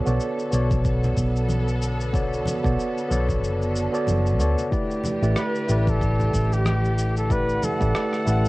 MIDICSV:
0, 0, Header, 1, 6, 480
1, 0, Start_track
1, 0, Tempo, 645161
1, 1595, Time_signature, 4, 2, 24, 8
1, 6314, End_track
2, 0, Start_track
2, 0, Title_t, "Flugelhorn"
2, 0, Program_c, 0, 56
2, 4006, Note_on_c, 0, 71, 95
2, 4387, Note_on_c, 0, 69, 95
2, 4398, Note_off_c, 0, 71, 0
2, 4860, Note_on_c, 0, 67, 81
2, 4871, Note_off_c, 0, 69, 0
2, 4959, Note_off_c, 0, 67, 0
2, 4962, Note_on_c, 0, 67, 88
2, 5309, Note_off_c, 0, 67, 0
2, 5340, Note_on_c, 0, 69, 85
2, 5448, Note_on_c, 0, 71, 103
2, 5459, Note_off_c, 0, 69, 0
2, 5687, Note_on_c, 0, 69, 100
2, 5698, Note_off_c, 0, 71, 0
2, 6314, Note_off_c, 0, 69, 0
2, 6314, End_track
3, 0, Start_track
3, 0, Title_t, "Tine electric piano"
3, 0, Program_c, 1, 4
3, 0, Control_c, 1, 64, 127
3, 0, Note_on_c, 1, 59, 75
3, 0, Note_on_c, 1, 66, 68
3, 0, Note_on_c, 1, 69, 68
3, 0, Note_on_c, 1, 73, 73
3, 0, Note_on_c, 1, 74, 83
3, 40, Note_off_c, 1, 59, 0
3, 40, Note_on_c, 1, 59, 76
3, 42, Note_off_c, 1, 66, 0
3, 42, Note_on_c, 1, 66, 68
3, 48, Note_off_c, 1, 69, 0
3, 48, Note_on_c, 1, 69, 67
3, 53, Note_off_c, 1, 73, 0
3, 53, Note_on_c, 1, 73, 63
3, 54, Note_off_c, 1, 74, 0
3, 54, Note_on_c, 1, 74, 79
3, 364, Note_off_c, 1, 59, 0
3, 365, Note_off_c, 1, 66, 0
3, 369, Note_off_c, 1, 69, 0
3, 371, Note_off_c, 1, 73, 0
3, 372, Note_off_c, 1, 74, 0
3, 376, Note_on_c, 1, 59, 74
3, 382, Note_on_c, 1, 66, 67
3, 392, Note_on_c, 1, 69, 67
3, 397, Note_on_c, 1, 73, 74
3, 407, Note_on_c, 1, 74, 80
3, 1560, Note_off_c, 1, 59, 0
3, 1564, Note_off_c, 1, 66, 0
3, 1569, Note_off_c, 1, 69, 0
3, 1571, Note_off_c, 1, 73, 0
3, 1576, Note_off_c, 1, 74, 0
3, 1585, Note_on_c, 1, 59, 74
3, 1586, Note_on_c, 1, 66, 70
3, 1592, Note_on_c, 1, 69, 73
3, 1596, Note_on_c, 1, 73, 74
3, 1599, Note_on_c, 1, 74, 84
3, 1934, Note_off_c, 1, 59, 0
3, 1934, Note_off_c, 1, 66, 0
3, 1937, Note_off_c, 1, 69, 0
3, 1939, Note_off_c, 1, 73, 0
3, 1940, Note_off_c, 1, 74, 0
3, 1960, Note_on_c, 1, 59, 75
3, 1961, Note_on_c, 1, 66, 65
3, 1965, Note_on_c, 1, 69, 68
3, 1971, Note_on_c, 1, 73, 69
3, 1974, Note_on_c, 1, 74, 79
3, 2285, Note_off_c, 1, 59, 0
3, 2285, Note_off_c, 1, 66, 0
3, 2287, Note_off_c, 1, 69, 0
3, 2290, Note_off_c, 1, 73, 0
3, 2291, Note_off_c, 1, 74, 0
3, 2297, Note_on_c, 1, 59, 80
3, 2305, Note_on_c, 1, 66, 66
3, 2312, Note_on_c, 1, 69, 74
3, 2319, Note_on_c, 1, 73, 70
3, 2325, Note_on_c, 1, 74, 85
3, 2895, Note_off_c, 1, 59, 0
3, 2899, Note_off_c, 1, 66, 0
3, 2902, Note_off_c, 1, 69, 0
3, 2906, Note_off_c, 1, 73, 0
3, 2909, Note_off_c, 1, 74, 0
3, 2919, Note_on_c, 1, 59, 89
3, 2926, Note_on_c, 1, 66, 75
3, 2930, Note_on_c, 1, 69, 74
3, 2933, Note_on_c, 1, 73, 75
3, 2935, Note_on_c, 1, 74, 92
3, 3244, Note_off_c, 1, 59, 0
3, 3247, Note_off_c, 1, 66, 0
3, 3249, Note_off_c, 1, 69, 0
3, 3251, Note_off_c, 1, 73, 0
3, 3252, Note_off_c, 1, 74, 0
3, 3269, Note_on_c, 1, 59, 69
3, 3273, Note_on_c, 1, 66, 59
3, 3277, Note_on_c, 1, 69, 59
3, 3279, Note_on_c, 1, 73, 66
3, 3284, Note_on_c, 1, 74, 78
3, 3487, Note_off_c, 1, 59, 0
3, 3489, Note_off_c, 1, 66, 0
3, 3491, Note_off_c, 1, 69, 0
3, 3492, Note_off_c, 1, 73, 0
3, 3494, Note_off_c, 1, 74, 0
3, 3506, Note_on_c, 1, 57, 78
3, 3507, Note_on_c, 1, 64, 73
3, 3511, Note_on_c, 1, 67, 75
3, 3515, Note_on_c, 1, 71, 65
3, 3519, Note_on_c, 1, 74, 87
3, 3525, Control_c, 1, 64, 0
3, 3647, Control_c, 1, 64, 127
3, 3854, Note_off_c, 1, 57, 0
3, 3854, Note_off_c, 1, 64, 0
3, 3857, Note_off_c, 1, 67, 0
3, 3858, Note_off_c, 1, 71, 0
3, 3861, Note_off_c, 1, 74, 0
3, 3883, Note_on_c, 1, 57, 73
3, 3887, Note_on_c, 1, 64, 67
3, 3890, Note_on_c, 1, 67, 66
3, 3895, Note_on_c, 1, 71, 70
3, 3896, Note_on_c, 1, 74, 77
3, 4206, Note_off_c, 1, 57, 0
3, 4208, Note_off_c, 1, 64, 0
3, 4209, Note_off_c, 1, 67, 0
3, 4212, Note_off_c, 1, 71, 0
3, 4213, Note_off_c, 1, 74, 0
3, 4223, Note_on_c, 1, 57, 73
3, 4228, Note_on_c, 1, 64, 70
3, 4236, Note_on_c, 1, 67, 68
3, 4245, Note_on_c, 1, 71, 67
3, 4252, Note_on_c, 1, 74, 80
3, 5404, Note_off_c, 1, 57, 0
3, 5407, Note_off_c, 1, 64, 0
3, 5411, Note_off_c, 1, 67, 0
3, 5415, Note_off_c, 1, 71, 0
3, 5419, Note_off_c, 1, 74, 0
3, 5428, Note_on_c, 1, 57, 73
3, 5433, Note_on_c, 1, 64, 69
3, 5436, Note_on_c, 1, 67, 67
3, 5438, Note_on_c, 1, 71, 73
3, 5442, Note_on_c, 1, 74, 83
3, 5775, Note_off_c, 1, 57, 0
3, 5777, Note_off_c, 1, 64, 0
3, 5779, Note_off_c, 1, 67, 0
3, 5780, Note_off_c, 1, 71, 0
3, 5782, Note_off_c, 1, 74, 0
3, 5803, Note_on_c, 1, 57, 71
3, 5804, Note_on_c, 1, 64, 68
3, 5809, Note_on_c, 1, 67, 70
3, 5812, Note_on_c, 1, 71, 71
3, 5818, Note_on_c, 1, 74, 84
3, 6126, Note_off_c, 1, 57, 0
3, 6126, Note_off_c, 1, 64, 0
3, 6129, Note_off_c, 1, 67, 0
3, 6131, Note_off_c, 1, 71, 0
3, 6134, Note_off_c, 1, 74, 0
3, 6138, Note_on_c, 1, 57, 77
3, 6148, Note_on_c, 1, 64, 74
3, 6154, Note_on_c, 1, 67, 74
3, 6163, Note_on_c, 1, 71, 67
3, 6172, Note_on_c, 1, 74, 89
3, 6314, Note_off_c, 1, 57, 0
3, 6314, Note_off_c, 1, 64, 0
3, 6314, Note_off_c, 1, 67, 0
3, 6314, Note_off_c, 1, 71, 0
3, 6314, Note_off_c, 1, 74, 0
3, 6314, End_track
4, 0, Start_track
4, 0, Title_t, "String section"
4, 0, Program_c, 2, 48
4, 0, Note_on_c, 2, 50, 64
4, 0, Note_on_c, 2, 59, 63
4, 0, Note_on_c, 2, 69, 79
4, 3486, Note_off_c, 2, 59, 0
4, 3487, Note_off_c, 2, 69, 0
4, 3521, Note_on_c, 2, 67, 81
4, 3526, Note_on_c, 2, 57, 62
4, 5419, Note_off_c, 2, 67, 0
4, 5435, Note_on_c, 2, 78, 74
4, 6314, Note_off_c, 2, 50, 0
4, 6314, Note_off_c, 2, 57, 0
4, 6314, Note_off_c, 2, 78, 0
4, 6314, End_track
5, 0, Start_track
5, 0, Title_t, "Fingered electric bass"
5, 0, Program_c, 3, 33
5, 49, Note_on_c, 3, 35, 87
5, 129, Note_off_c, 3, 35, 0
5, 393, Note_on_c, 3, 35, 87
5, 835, Note_off_c, 3, 35, 0
5, 870, Note_on_c, 3, 35, 75
5, 1793, Note_off_c, 3, 35, 0
5, 1968, Note_on_c, 3, 35, 86
5, 2049, Note_off_c, 3, 35, 0
5, 2312, Note_on_c, 3, 35, 90
5, 2552, Note_off_c, 3, 35, 0
5, 2552, Note_on_c, 3, 30, 76
5, 2878, Note_off_c, 3, 30, 0
5, 3032, Note_on_c, 3, 30, 83
5, 3271, Note_off_c, 3, 30, 0
5, 3271, Note_on_c, 3, 38, 82
5, 3377, Note_off_c, 3, 38, 0
5, 3885, Note_on_c, 3, 33, 88
5, 3967, Note_off_c, 3, 33, 0
5, 4236, Note_on_c, 3, 33, 83
5, 4676, Note_off_c, 3, 33, 0
5, 4715, Note_on_c, 3, 33, 76
5, 5636, Note_off_c, 3, 33, 0
5, 5810, Note_on_c, 3, 33, 92
5, 5890, Note_off_c, 3, 33, 0
5, 6154, Note_on_c, 3, 33, 89
5, 6314, Note_off_c, 3, 33, 0
5, 6314, End_track
6, 0, Start_track
6, 0, Title_t, "Drums"
6, 48, Note_on_c, 9, 69, 31
6, 123, Note_off_c, 9, 69, 0
6, 151, Note_on_c, 9, 69, 45
6, 225, Note_off_c, 9, 69, 0
6, 290, Note_on_c, 9, 69, 21
6, 365, Note_off_c, 9, 69, 0
6, 391, Note_on_c, 9, 69, 77
6, 465, Note_off_c, 9, 69, 0
6, 528, Note_on_c, 9, 36, 102
6, 528, Note_on_c, 9, 69, 30
6, 533, Note_on_c, 9, 63, 63
6, 602, Note_off_c, 9, 36, 0
6, 603, Note_off_c, 9, 69, 0
6, 607, Note_off_c, 9, 63, 0
6, 631, Note_on_c, 9, 36, 85
6, 631, Note_on_c, 9, 69, 38
6, 705, Note_off_c, 9, 69, 0
6, 706, Note_off_c, 9, 36, 0
6, 768, Note_on_c, 9, 69, 19
6, 775, Note_on_c, 9, 64, 81
6, 843, Note_off_c, 9, 69, 0
6, 850, Note_off_c, 9, 64, 0
6, 870, Note_on_c, 9, 36, 60
6, 872, Note_on_c, 9, 69, 70
6, 945, Note_off_c, 9, 36, 0
6, 946, Note_off_c, 9, 69, 0
6, 1012, Note_on_c, 9, 69, 31
6, 1086, Note_off_c, 9, 69, 0
6, 1104, Note_on_c, 9, 63, 93
6, 1113, Note_on_c, 9, 69, 42
6, 1179, Note_off_c, 9, 63, 0
6, 1188, Note_off_c, 9, 69, 0
6, 1250, Note_on_c, 9, 69, 21
6, 1325, Note_off_c, 9, 69, 0
6, 1355, Note_on_c, 9, 69, 73
6, 1430, Note_off_c, 9, 69, 0
6, 1491, Note_on_c, 9, 69, 30
6, 1566, Note_off_c, 9, 69, 0
6, 1591, Note_on_c, 9, 36, 112
6, 1598, Note_on_c, 9, 69, 44
6, 1665, Note_off_c, 9, 36, 0
6, 1672, Note_off_c, 9, 69, 0
6, 1735, Note_on_c, 9, 69, 21
6, 1809, Note_off_c, 9, 69, 0
6, 1827, Note_on_c, 9, 63, 85
6, 1827, Note_on_c, 9, 64, 86
6, 1840, Note_on_c, 9, 69, 70
6, 1901, Note_off_c, 9, 63, 0
6, 1902, Note_off_c, 9, 64, 0
6, 1915, Note_off_c, 9, 69, 0
6, 1966, Note_on_c, 9, 36, 94
6, 1976, Note_on_c, 9, 69, 30
6, 2041, Note_off_c, 9, 36, 0
6, 2051, Note_off_c, 9, 69, 0
6, 2080, Note_on_c, 9, 69, 43
6, 2154, Note_off_c, 9, 69, 0
6, 2215, Note_on_c, 9, 69, 21
6, 2289, Note_off_c, 9, 69, 0
6, 2318, Note_on_c, 9, 69, 75
6, 2393, Note_off_c, 9, 69, 0
6, 2444, Note_on_c, 9, 63, 63
6, 2447, Note_on_c, 9, 36, 58
6, 2453, Note_on_c, 9, 69, 30
6, 2518, Note_off_c, 9, 63, 0
6, 2522, Note_off_c, 9, 36, 0
6, 2527, Note_off_c, 9, 69, 0
6, 2560, Note_on_c, 9, 69, 39
6, 2634, Note_off_c, 9, 69, 0
6, 2693, Note_on_c, 9, 69, 19
6, 2767, Note_off_c, 9, 69, 0
6, 2796, Note_on_c, 9, 69, 74
6, 2870, Note_off_c, 9, 69, 0
6, 2933, Note_on_c, 9, 69, 33
6, 3008, Note_off_c, 9, 69, 0
6, 3027, Note_on_c, 9, 63, 90
6, 3036, Note_on_c, 9, 69, 40
6, 3101, Note_off_c, 9, 63, 0
6, 3111, Note_off_c, 9, 69, 0
6, 3171, Note_on_c, 9, 69, 22
6, 3246, Note_off_c, 9, 69, 0
6, 3275, Note_on_c, 9, 69, 70
6, 3349, Note_off_c, 9, 69, 0
6, 3410, Note_on_c, 9, 64, 59
6, 3410, Note_on_c, 9, 69, 30
6, 3484, Note_off_c, 9, 69, 0
6, 3485, Note_off_c, 9, 64, 0
6, 3513, Note_on_c, 9, 36, 113
6, 3514, Note_on_c, 9, 69, 41
6, 3588, Note_off_c, 9, 36, 0
6, 3589, Note_off_c, 9, 69, 0
6, 3651, Note_on_c, 9, 69, 19
6, 3725, Note_off_c, 9, 69, 0
6, 3746, Note_on_c, 9, 64, 82
6, 3754, Note_on_c, 9, 63, 78
6, 3756, Note_on_c, 9, 69, 67
6, 3821, Note_off_c, 9, 64, 0
6, 3829, Note_off_c, 9, 63, 0
6, 3831, Note_off_c, 9, 69, 0
6, 3890, Note_on_c, 9, 69, 29
6, 3964, Note_off_c, 9, 69, 0
6, 3988, Note_on_c, 9, 37, 91
6, 3990, Note_on_c, 9, 69, 41
6, 4062, Note_off_c, 9, 37, 0
6, 4065, Note_off_c, 9, 69, 0
6, 4129, Note_on_c, 9, 69, 20
6, 4203, Note_off_c, 9, 69, 0
6, 4233, Note_on_c, 9, 69, 69
6, 4307, Note_off_c, 9, 69, 0
6, 4369, Note_on_c, 9, 36, 102
6, 4369, Note_on_c, 9, 63, 64
6, 4371, Note_on_c, 9, 69, 28
6, 4443, Note_off_c, 9, 36, 0
6, 4443, Note_off_c, 9, 63, 0
6, 4445, Note_off_c, 9, 69, 0
6, 4473, Note_on_c, 9, 36, 89
6, 4476, Note_on_c, 9, 69, 38
6, 4547, Note_off_c, 9, 36, 0
6, 4551, Note_off_c, 9, 69, 0
6, 4610, Note_on_c, 9, 64, 75
6, 4615, Note_on_c, 9, 69, 19
6, 4685, Note_off_c, 9, 64, 0
6, 4689, Note_off_c, 9, 69, 0
6, 4712, Note_on_c, 9, 36, 57
6, 4717, Note_on_c, 9, 69, 71
6, 4787, Note_off_c, 9, 36, 0
6, 4791, Note_off_c, 9, 69, 0
6, 4852, Note_on_c, 9, 69, 31
6, 4927, Note_off_c, 9, 69, 0
6, 4947, Note_on_c, 9, 63, 83
6, 4953, Note_on_c, 9, 37, 84
6, 4956, Note_on_c, 9, 69, 37
6, 5022, Note_off_c, 9, 63, 0
6, 5027, Note_off_c, 9, 37, 0
6, 5030, Note_off_c, 9, 69, 0
6, 5092, Note_on_c, 9, 69, 19
6, 5167, Note_off_c, 9, 69, 0
6, 5195, Note_on_c, 9, 69, 70
6, 5269, Note_off_c, 9, 69, 0
6, 5331, Note_on_c, 9, 69, 30
6, 5405, Note_off_c, 9, 69, 0
6, 5432, Note_on_c, 9, 36, 107
6, 5438, Note_on_c, 9, 69, 42
6, 5506, Note_off_c, 9, 36, 0
6, 5513, Note_off_c, 9, 69, 0
6, 5573, Note_on_c, 9, 69, 19
6, 5647, Note_off_c, 9, 69, 0
6, 5673, Note_on_c, 9, 63, 74
6, 5675, Note_on_c, 9, 64, 75
6, 5676, Note_on_c, 9, 69, 70
6, 5747, Note_off_c, 9, 63, 0
6, 5749, Note_off_c, 9, 64, 0
6, 5750, Note_off_c, 9, 69, 0
6, 5809, Note_on_c, 9, 36, 82
6, 5811, Note_on_c, 9, 69, 28
6, 5883, Note_off_c, 9, 36, 0
6, 5885, Note_off_c, 9, 69, 0
6, 5913, Note_on_c, 9, 37, 95
6, 5916, Note_on_c, 9, 69, 41
6, 5988, Note_off_c, 9, 37, 0
6, 5991, Note_off_c, 9, 69, 0
6, 6048, Note_on_c, 9, 37, 27
6, 6050, Note_on_c, 9, 69, 20
6, 6122, Note_off_c, 9, 37, 0
6, 6125, Note_off_c, 9, 69, 0
6, 6155, Note_on_c, 9, 69, 67
6, 6229, Note_off_c, 9, 69, 0
6, 6287, Note_on_c, 9, 63, 55
6, 6288, Note_on_c, 9, 69, 31
6, 6314, Note_off_c, 9, 63, 0
6, 6314, Note_off_c, 9, 69, 0
6, 6314, End_track
0, 0, End_of_file